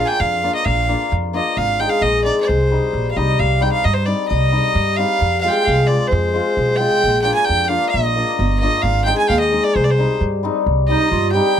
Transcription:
0.00 hammered dulcimer F4
0.05 violin G5 G#5
0.20 upright bass F2, violin F5
0.43 hammered dulcimer A#3 D4 F4
0.55 violin D#5
0.65 upright bass A#1, violin F5
0.89 hammered dulcimer A#3 D4 F4
1.12 upright bass F2
1.33 hammered dulcimer A#3 D4 F4, violin D#5
1.57 upright bass G#1, violin F5
1.79 hammered dulcimer G#3 C4 D#4, violin G5
1.89 violin F5
2.02 upright bass A#1, violin D#5
2.24 hammered dulcimer G#3 C4 D#4, violin D5
2.41 violin D5
2.48 upright bass C2, violin C5
2.71 hammered dulcimer G3 C4 D#4
2.93 upright bass A#1
3.11 violin F5
3.17 upright bass C2, hammered dulcimer G3 C4 D#4, violin D#5
3.39 upright bass C2, violin F5
3.61 hammered dulcimer G3 C4 D#4, violin G5
3.72 violin F5
3.85 upright bass G2, violin D#5
3.94 violin C5
4.05 hammered dulcimer G3 C4 D#4, violin D5
4.28 upright bass C2, violin D#5
4.52 hammered dulcimer G3 C4 D#4
4.75 upright bass G2
4.96 hammered dulcimer G3 C4 D#4, violin F5
5.21 upright bass F2
5.41 hammered dulcimer G#3 C4 F4, violin F5
5.47 violin F5 G5
5.53 violin G5
5.64 upright bass C2, violin F5
5.87 hammered dulcimer G#3 C4 F4, violin D5
6.08 violin C5
6.12 upright bass F2
6.34 hammered dulcimer G#3 C4 F4
6.57 upright bass B1
6.76 hammered dulcimer G#3, violin G5
6.80 hammered dulcimer C4 F4
7.04 upright bass A#1
7.22 hammered dulcimer A#3 D4 F4, violin G5
7.34 violin G#5
7.44 violin G5
7.49 upright bass F2
7.64 violin F5 G5
7.68 hammered dulcimer A#3 D4 F4
7.89 violin D#5
7.94 upright bass A#1
8.16 hammered dulcimer A#3 D4 F4
8.39 upright bass G1
8.60 hammered dulcimer A#3 D4 F4, violin D#5
8.82 upright bass G#1, violin F5
9.04 hammered dulcimer G#3 C4 D#4, violin G5
9.18 violin G#5
9.27 upright bass D#2, violin F5 G5
9.39 violin D#5
9.51 hammered dulcimer G#3 C4 D#4
9.63 violin D5
9.76 upright bass C2, violin C5
9.84 violin D5
9.90 violin C5
9.98 hammered dulcimer G3 C4 D#4
10.21 upright bass G2
10.43 hammered dulcimer G3 C4 D#4
10.66 upright bass C2
10.88 hammered dulcimer G3 C4 D#4, clarinet D#4, violin D#5
11.11 upright bass G2, clarinet F4
11.32 hammered dulcimer G3 C4, clarinet G4, violin G5
11.37 hammered dulcimer D#4

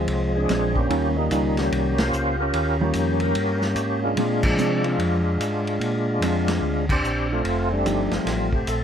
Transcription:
Already playing: tonewheel organ F3 G#3 C4
0.07 tonewheel organ C2, ride
0.35 tonewheel organ C4 D4 G#4
0.48 tonewheel organ A#1, hollow-body jazz guitar G#3 C4 D4, snare, hi-hat pedal, ride
0.76 tonewheel organ A#3 C#4 G4, kick
0.89 tonewheel organ D#2, hollow-body jazz guitar D#3 G3 C#4 F4, ride
1.09 tonewheel organ C#4
1.17 tonewheel organ G3 A#3 D#4
1.30 tonewheel organ C#2, hollow-body jazz guitar D#3 G3 C#4 F4, hi-hat pedal, ride
1.57 tonewheel organ A#3 C#4 G4, snare, ride
1.72 tonewheel organ C2, ride
1.98 tonewheel organ F4 G4 C5, snare, ride
2.12 tonewheel organ C#2, hi-hat pedal
2.40 tonewheel organ C#4 G4 A#4
2.53 tonewheel organ D#2, ride
2.81 hollow-body jazz guitar D#3 G3 C#4 F4, tonewheel organ A#3 C#4 G4
2.93 tonewheel organ F2, hi-hat pedal, ride
3.20 tonewheel organ A#4, ride
3.24 tonewheel organ C#4 G4
3.35 tonewheel organ G2, ride
3.61 tonewheel organ A#3 C#4 G4, snare
3.75 tonewheel organ G#2, hi-hat pedal, ride
4.04 tonewheel organ G#3 D4 F4
4.17 tonewheel organ A#2, hollow-body jazz guitar G#3 C4 D4, ride
4.43 tonewheel organ F3 G#3 D4, kick, crash
4.57 tonewheel organ C3, hollow-body jazz guitar G#3 C4 D4, hi-hat pedal
4.84 tonewheel organ G#3 D4 F4, ride
4.98 tonewheel organ F2, ride
5.39 tonewheel organ G#2, hi-hat pedal, ride
5.67 ride
5.80 tonewheel organ A#2, ride
6.20 tonewheel organ F2, hollow-body jazz guitar G#3 C4 D4, hi-hat pedal, ride
6.48 snare, ride
6.61 tonewheel organ D2
6.89 tonewheel organ C4 D4 G4, kick, crash
7.03 tonewheel organ A#1, hi-hat pedal
7.32 tonewheel organ A3 C4 F4
7.44 tonewheel organ F1, ride
7.72 tonewheel organ G3 A3 D4
7.85 tonewheel organ G1, hollow-body jazz guitar F3 A3 D#4 G4, hi-hat pedal, ride
8.11 tonewheel organ G1 A3 F4, snare, ride
8.15 tonewheel organ C4
8.25 tonewheel organ A1, snare, ride
8.53 tonewheel organ G4, kick
8.67 tonewheel organ A#1 A4, hi-hat pedal, ride

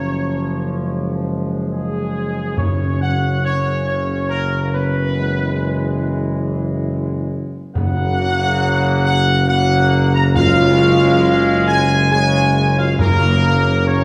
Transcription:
Already playing: tuba F#1, trombone section F3 A#3, french horn section C#4, trumpet section C#5
0.82 trombone section G#3
1.71 french horn section G#3, trumpet section G#4
2.57 tuba F#1, timpani F#2, trombone section C#3 C#4, french horn section C#4, trumpet section C#5
3.01 french horn section F#4, trumpet section F#5
3.43 french horn section C#4, trumpet section C#5
3.86 french horn section C#4, trumpet section C#5
4.29 french horn section A#3, trumpet section A#4
4.59 french horn section A#3, trumpet section A#4
4.73 french horn section B3, trumpet section B4
5.16 trombone section E3 G#3
7.74 tuba F#1, timpani F#2, trombone section C#3 A#3, french horn section F#4, trumpet section F#5
9.04 french horn section F#4, trumpet section F#5
9.48 trombone section C#3 A#3, french horn section F#4, trumpet section F#5
10.14 french horn section A#4, trumpet section A#5
10.35 timpani F#2, trombone section C#3 G#3, french horn section F4, trumpet section F5
11.67 french horn section G#4, trumpet section G#5
12.11 trombone section C#3 G#3, french horn section G#4, trumpet section G#5
12.77 french horn section F4, trumpet section F5
12.99 tuba F#1, timpani F#2, trombone section C#3 A#3, french horn section A#3, trumpet section A#4
13.87 trombone section C#3 A#3, french horn section C#4, trumpet section C#5

